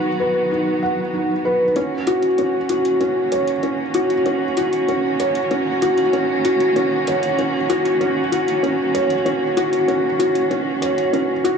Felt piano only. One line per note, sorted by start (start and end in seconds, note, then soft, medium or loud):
0.00 0.51 D#4 medium
0.00 0.20 B4 medium
0.00 0.82 F#5 medium
0.20 0.49 B4 medium
0.51 0.81 D#4 medium
0.82 1.00 F#5 medium
1.14 1.31 D#4 medium
1.45 1.63 B4 medium
1.76 1.94 C#4 medium
2.07 2.25 F#4 medium
2.39 2.56 C#4 medium
2.70 2.99 F#4 medium
3.01 3.31 C#4 medium
3.32 3.50 C#5 medium
3.63 3.81 C#4 medium
3.95 4.12 F#4 medium
4.26 4.44 C#4 medium
4.57 4.87 F#4 medium
4.89 5.18 C#4 medium
5.20 5.38 C#5 medium
5.51 5.69 C#4 medium
5.82 6.00 F#4 medium
6.13 6.31 C#4 medium
6.45 6.75 F#4 medium
6.76 7.06 C#4 medium
7.08 7.25 C#5 medium
7.38 7.56 C#4 medium
7.70 7.87 F#4 loud
8.01 8.19 C#4 medium
8.32 8.62 F#4 medium
8.63 8.93 C#4 medium
8.94 9.12 C#5 medium
9.26 9.44 C#4 medium
9.57 9.75 F#4 medium
9.88 10.06 C#4 medium
10.19 10.49 F#4 medium
10.51 10.81 C#4 medium
10.82 11.00 C#5 medium
11.13 11.31 C#4 medium
11.44 11.58 F#4 medium